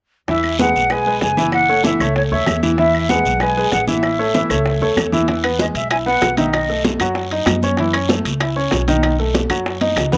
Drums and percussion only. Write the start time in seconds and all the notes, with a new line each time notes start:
0.28 high bongo, high conga, long guiro
0.44 high conga, claves
0.59 high bongo, high conga, short guiro
0.75 high conga, short guiro
0.90 high bongo, high conga, long guiro, claves
1.06 high conga
1.21 high bongo, low bongo, high conga, short guiro
1.37 high conga, short guiro
1.52 high bongo, high conga, long guiro, claves
1.69 high conga
1.84 high bongo, high conga, short guiro
2.00 high bongo, high conga, short guiro, claves
2.16 high bongo, high conga, long guiro
2.31 high bongo, high conga
2.46 high bongo, low bongo, high conga, short guiro, claves
2.63 high bongo, high conga, short guiro
2.78 high bongo, high conga, long guiro
2.94 high conga, claves
3.09 high bongo, high conga, short guiro
3.25 high conga, short guiro
3.40 high bongo, high conga, long guiro, claves
3.57 high conga
3.72 high bongo, low bongo, high conga, short guiro
3.87 high conga, short guiro
4.03 high bongo, high conga, long guiro, claves
4.19 high conga
4.34 high bongo, high conga, short guiro
4.50 high bongo, high conga, short guiro, claves
4.66 high bongo, high conga, long guiro
4.81 high bongo, high conga
4.97 high bongo, low bongo, high conga, short guiro, claves
5.12 high bongo, high conga, short guiro
5.28 high bongo, high conga, high timbale, long guiro
5.44 high conga, high timbale, claves
5.59 high bongo, high conga, low timbale, short guiro
5.75 high conga, high timbale, short guiro
5.90 high bongo, high conga, high timbale, long guiro, claves
6.07 high conga
6.22 high bongo, low bongo, high conga, high timbale, low timbale, short guiro
6.37 high conga, high timbale, short guiro
6.53 high bongo, high conga, high timbale, long guiro, claves
6.69 high conga
6.84 high bongo, high conga, high timbale, low timbale, short guiro
6.99 high bongo, high conga, high timbale, short guiro, claves
7.15 high bongo, high conga, long guiro
7.31 high bongo, high conga, high timbale
7.46 high bongo, low bongo, high conga, high timbale, low timbale, short guiro, claves
7.62 high bongo, high conga, short guiro
7.77 high bongo, high conga, high timbale, long guiro
7.93 high conga, high timbale, claves
8.09 high bongo, high conga, low timbale, short guiro
8.25 high conga, high timbale, short guiro
8.40 high bongo, high conga, high timbale, long guiro, claves
8.57 high conga
8.71 high bongo, low bongo, high conga, high timbale, low timbale, short guiro
8.88 high conga, high timbale, short guiro
9.03 high bongo, high timbale, long guiro, claves
9.20 high conga
9.35 high bongo, high conga, high timbale, low timbale, short guiro
9.50 high bongo, high conga, high timbale, short guiro, claves
9.66 high bongo, high conga, long guiro
9.81 high bongo, high conga, high timbale
9.96 high bongo, low bongo, high timbale, low timbale, short guiro, claves
10.12 high bongo, low conga, short guiro